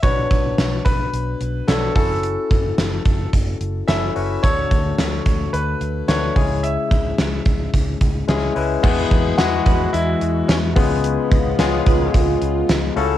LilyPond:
<<
  \new Staff \with { instrumentName = "Grand piano" } { \time 4/4 \key cis \phrygian \tempo 4 = 109 cis''4. b'4. a'8 a'8~ | a'2 r4 e''4 | cis''2 b'4 cis''4 | e''2 r2 |
b4 fis'4 e'4 cis'8 b8~ | b4. r2 r8 | }
  \new Staff \with { instrumentName = "Horn section" } { \time 4/4 \key cis \phrygian r1 | r1 | r1 | r1 |
r4. <b fis' gis' b'>8 r2 | r4. <b eis' gis' b'>8. r4. r16 | }
  \new Staff \with { instrumentName = "Tine electric piano" } { \time 4/4 \key cis \phrygian <b cis' d' fis' b'>4. r4. <b d' fis' cis''>8 <cis' e' fis' a'>8~ | <cis' e' fis' a'>4 r2 <cis' e' fis' a'>8 <cis' e' fis' b'>8 | <a d' fis' a'>4. r4. <a d' fis' b'>8 <gis cis' e' gis'>8~ | <gis cis' e' gis'>4 r2 <gis cis' e' gis'>8 <gis cis' e' b'>8 |
<gis b e' fis' gis'>8 r8 <gis b e' fis' gis'>4. r4 <gis b cis' eis' gis'>8~ | <gis b cis' eis' gis'>8 r8 <gis b cis' eis' gis'>4. r4 <a cis' e' fis' a'>8 | }
  \new Staff \with { instrumentName = "Tine electric piano" } { \clef bass \time 4/4 \key cis \phrygian b,4. r2 r8 | r1 | d4. r2 cis8~ | cis4 r2. |
e4. r2 cis8~ | cis4 r2 r8 cis8 | }
  \new Staff \with { instrumentName = "Analog synth pad" } { \time 4/4 \key cis \phrygian r1 | r1 | r1 | r1 |
<e gis fis'>2.~ <e gis fis'>8 <cis b eis'>8~ | <cis b eis'>2.~ <cis b eis'>8 <e a fis'>8 | }
  \new Staff \with { instrumentName = "Fingered electric bass" } { \clef bass \time 4/4 \key cis \phrygian b,,8 b,,8 b,,8 b,,8 b,,8 b,,8 b,,8 fis,,8~ | fis,,8 fis,,8 fis,,8 fis,,8 fis,,8 fis,,8 fis,,8 fis,,8 | d,8 d,8 d,8 d,8 d,8 d,8 d,8 cis,8~ | cis,8 cis,8 cis,8 cis,8 cis,8 cis,8 cis,8 cis,8 |
e,8 e,8 e,8 e,8 e,8 e,8 e,8 cis,8~ | cis,8 cis,8 cis,8 cis,8 cis,8 cis,8 cis,8 cis,8 | }
  \new DrumStaff \with { instrumentName = "Drums" } \drummode { \time 4/4 <hh bd>8 <hh bd>8 <hh sn>8 <hh bd>8 hh8 hh8 <hh sn>8 <hho bd>8 | hh8 <hh bd>8 <hh sn>8 <hh bd>8 <hh bd>8 hh8 <hh sn>8 hho8 | <hh bd>8 <hh bd>8 <hh sn>8 <hh bd>8 hh8 hh8 <hh sn>8 <hho bd>8 | hh8 <hh bd>8 <hh sn>8 <hh bd>8 <hh bd>8 <hh bd>8 <hh sn>8 hho8 |
<cymc bd>8 <hh bd>8 <hh sn tamb>8 <hh bd>8 hh8 hh8 <hh sn tamb>8 <hho bd>8 | hh8 <hh bd>8 <hh sn tamb>8 <hh bd>8 <hh bd>8 hh8 <hh sn tamb>8 hho8 | }
>>